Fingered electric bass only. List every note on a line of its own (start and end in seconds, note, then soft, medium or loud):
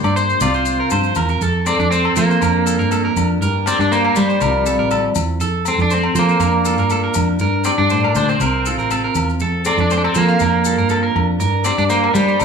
0.04 0.33 G2 medium
0.41 0.80 C2 loud
0.91 1.11 G2 loud
1.16 1.36 E2 medium
1.41 1.71 F2 medium
1.79 2.08 F2 medium
2.16 2.36 F3 medium
2.42 2.80 F2 medium
2.80 3.08 G2 loud
3.16 3.41 F2 medium
3.41 3.71 G2 medium
3.79 4.08 G2 medium
4.17 4.36 G3 medium
4.41 4.79 C2 medium
4.79 5.08 A1 loud
5.16 5.40 E2 medium
5.40 5.70 F2 medium
5.78 6.07 F2 loud
6.15 6.35 F3 medium
6.39 6.78 F2 medium
6.78 7.07 G2 loud
7.16 7.40 F2 medium
7.40 7.70 G2 medium
7.78 8.07 G2 medium
8.15 8.35 D2 medium
8.40 8.78 C2 loud
8.78 9.07 A1 medium
9.15 9.40 E2 medium
9.40 9.70 F2 medium
9.77 10.07 F2 medium
10.16 10.35 F3 medium
10.41 10.78 F2 loud
10.78 11.07 G2 medium
11.15 11.40 F2 loud
11.40 11.70 G2 medium
11.78 12.07 G2 medium
12.15 12.35 G3 medium
12.41 12.45 C2 medium